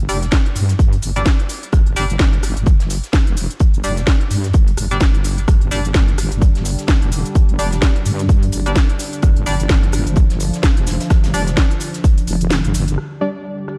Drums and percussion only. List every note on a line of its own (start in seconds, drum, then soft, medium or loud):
0.09 closed hi-hat medium
0.09 open hi-hat loud
0.09 cabasa medium
0.22 snare soft
0.22 closed hi-hat medium
0.22 cabasa soft
0.31 kick loud
0.31 snare loud
0.31 closed hi-hat loud
0.31 cabasa soft
0.46 closed hi-hat soft
0.56 closed hi-hat medium
0.56 open hi-hat loud
0.56 cabasa medium
0.69 snare soft
0.69 closed hi-hat medium
0.69 cabasa soft
0.79 kick loud
0.79 closed hi-hat medium
0.79 cabasa soft
0.93 closed hi-hat medium
0.93 closed hi-hat soft
1.02 closed hi-hat medium
1.02 open hi-hat loud
1.02 cabasa medium
1.16 closed hi-hat medium
1.16 cabasa soft
1.26 kick loud
1.26 snare loud
1.26 closed hi-hat loud
1.26 cabasa soft
1.40 closed hi-hat medium
1.49 snare medium
1.49 closed hi-hat medium
1.49 open hi-hat loud
1.49 cabasa medium
1.63 closed hi-hat medium
1.63 cabasa soft
1.72 kick loud
1.72 cross-stick medium
1.72 closed hi-hat medium
1.72 cabasa soft
1.86 closed hi-hat soft
1.96 closed hi-hat medium
1.96 open hi-hat loud
1.96 cabasa medium
2.10 closed hi-hat medium
2.10 cabasa soft
2.19 kick loud
2.19 snare loud
2.19 closed hi-hat medium
2.19 cabasa soft
2.33 closed hi-hat soft
2.43 cross-stick medium
2.43 closed hi-hat medium
2.43 open hi-hat loud
2.43 cabasa medium
2.57 closed hi-hat medium
2.57 cabasa soft
2.66 kick loud
2.66 closed hi-hat medium
2.66 cabasa soft
2.80 snare medium
2.80 closed hi-hat soft
2.90 closed hi-hat medium
2.90 open hi-hat loud
2.90 cabasa medium
3.04 snare soft
3.04 closed hi-hat medium
3.04 cabasa soft
3.13 kick loud
3.13 snare loud
3.13 closed hi-hat medium
3.13 cabasa soft
3.27 closed hi-hat medium
3.37 closed hi-hat medium
3.37 open hi-hat loud
3.37 cabasa medium
3.51 closed hi-hat medium
3.51 cabasa soft
3.60 kick loud
3.60 closed hi-hat medium
3.60 cabasa soft
3.74 closed hi-hat soft
3.74 cabasa soft
3.83 closed hi-hat medium
3.83 open hi-hat loud
3.83 cabasa medium
3.97 snare medium
3.97 closed hi-hat medium
3.97 cabasa soft
4.07 kick loud
4.07 snare loud
4.07 closed hi-hat medium
4.07 cabasa soft
4.21 closed hi-hat soft
4.31 closed hi-hat medium
4.31 open hi-hat loud
4.31 cabasa medium
4.44 snare soft
4.44 closed hi-hat medium
4.44 cabasa soft
4.53 kick loud
4.53 closed hi-hat medium
4.53 cabasa soft
4.67 closed hi-hat soft
4.77 cross-stick medium
4.77 closed hi-hat medium
4.77 open hi-hat loud
4.77 cabasa medium
4.91 closed hi-hat medium
4.91 cabasa soft
5.00 kick loud
5.00 snare loud
5.00 closed hi-hat medium
5.00 cabasa soft
5.14 closed hi-hat soft
5.23 snare medium
5.23 closed hi-hat medium
5.23 open hi-hat loud
5.23 cabasa medium
5.38 closed hi-hat medium
5.38 cabasa soft
5.48 kick loud
5.48 cross-stick medium
5.48 closed hi-hat medium
5.48 cabasa soft
5.61 closed hi-hat soft
5.71 closed hi-hat medium
5.71 open hi-hat loud
5.71 cabasa medium
5.85 closed hi-hat medium
5.85 cabasa soft
5.94 kick loud
5.94 snare loud
5.94 closed hi-hat medium
5.94 cabasa soft
6.08 closed hi-hat soft
6.18 cross-stick medium
6.18 closed hi-hat medium
6.18 open hi-hat loud
6.18 cabasa medium
6.32 closed hi-hat medium
6.32 cabasa soft
6.42 kick loud
6.42 closed hi-hat medium
6.42 cabasa soft
6.55 snare medium
6.55 closed hi-hat soft
6.65 closed hi-hat medium
6.65 open hi-hat loud
6.65 cabasa medium
6.79 snare soft
6.79 closed hi-hat medium
6.79 cabasa soft
6.88 kick loud
6.88 snare loud
6.88 closed hi-hat medium
6.88 cabasa soft
7.02 closed hi-hat soft
7.12 closed hi-hat medium
7.12 open hi-hat loud
7.12 cabasa medium
7.25 closed hi-hat medium
7.25 cabasa soft
7.35 kick loud
7.35 closed hi-hat medium
7.35 cabasa soft
7.49 closed hi-hat soft
7.59 closed hi-hat medium
7.59 open hi-hat loud
7.59 cabasa medium
7.72 snare medium
7.72 closed hi-hat medium
7.72 cabasa soft
7.82 kick loud
7.82 snare loud
7.82 closed hi-hat medium
7.82 cabasa soft
7.96 closed hi-hat soft
8.06 closed hi-hat medium
8.06 open hi-hat loud
8.06 cabasa medium
8.19 snare soft
8.19 closed hi-hat medium
8.19 cabasa soft
8.29 kick loud
8.29 closed hi-hat medium
8.29 cabasa soft
8.43 closed hi-hat medium
8.43 closed hi-hat soft
8.52 closed hi-hat medium
8.52 open hi-hat loud
8.52 cabasa medium
8.66 closed hi-hat medium
8.66 cabasa soft
8.75 kick loud
8.75 snare loud
8.75 closed hi-hat medium
8.75 cabasa soft
8.89 closed hi-hat medium
8.99 snare soft
8.99 closed hi-hat medium
8.99 open hi-hat loud
8.99 cabasa medium
9.13 closed hi-hat medium
9.13 cabasa soft
9.22 kick loud
9.22 cross-stick medium
9.22 closed hi-hat medium
9.22 cabasa soft
9.36 closed hi-hat soft
9.46 closed hi-hat medium
9.46 open hi-hat loud
9.46 cabasa medium
9.60 closed hi-hat medium
9.60 cabasa soft
9.69 kick loud
9.69 snare loud
9.69 closed hi-hat medium
9.69 cabasa soft
9.83 closed hi-hat soft
9.92 cross-stick medium
9.92 closed hi-hat medium
9.92 open hi-hat loud
9.92 cabasa medium
10.07 closed hi-hat medium
10.07 cabasa soft
10.16 kick loud
10.16 closed hi-hat medium
10.16 cabasa soft
10.30 snare medium
10.30 closed hi-hat medium
10.40 closed hi-hat medium
10.40 open hi-hat loud
10.40 cabasa medium
10.54 snare soft
10.54 closed hi-hat medium
10.54 cabasa soft
10.63 kick loud
10.63 snare loud
10.63 closed hi-hat medium
10.63 cabasa soft
10.77 closed hi-hat medium
10.87 snare loud
10.87 closed hi-hat medium
10.87 open hi-hat loud
10.87 cabasa medium
11.00 snare loud
11.00 closed hi-hat medium
11.00 cabasa soft
11.10 kick loud
11.10 cross-stick medium
11.10 snare loud
11.10 closed hi-hat medium
11.10 cabasa soft
11.24 snare loud
11.24 closed hi-hat medium
11.24 closed hi-hat soft
11.24 cabasa soft
11.34 closed hi-hat medium
11.34 open hi-hat loud
11.34 cabasa medium
11.47 snare medium
11.47 closed hi-hat medium
11.47 cabasa soft
11.57 kick loud
11.57 snare loud
11.57 closed hi-hat medium
11.57 cabasa soft
11.71 closed hi-hat soft
11.71 cabasa soft
11.80 closed hi-hat medium
11.80 open hi-hat loud
11.80 cabasa medium
11.94 snare medium
11.94 closed hi-hat medium
11.94 cabasa soft
12.04 kick loud
12.04 closed hi-hat medium
12.04 cabasa soft
12.18 closed hi-hat medium
12.18 closed hi-hat soft
12.18 cabasa soft
12.27 closed hi-hat medium
12.27 open hi-hat loud
12.27 cabasa medium
12.41 closed hi-hat medium
12.41 cabasa soft
12.50 snare loud
12.50 closed hi-hat medium
12.50 cabasa soft
12.64 closed hi-hat medium
12.64 cabasa soft
12.74 snare soft
12.74 closed hi-hat medium
12.74 open hi-hat loud
12.74 cabasa medium
12.88 closed hi-hat medium
12.88 cabasa soft
12.98 cross-stick medium
12.98 closed hi-hat medium
13.11 closed hi-hat soft
13.21 cabasa medium
13.35 closed hi-hat medium
13.35 cabasa soft
13.44 closed hi-hat medium
13.44 cabasa soft
13.58 closed hi-hat soft
13.68 cross-stick medium
13.68 closed hi-hat medium
13.68 cabasa medium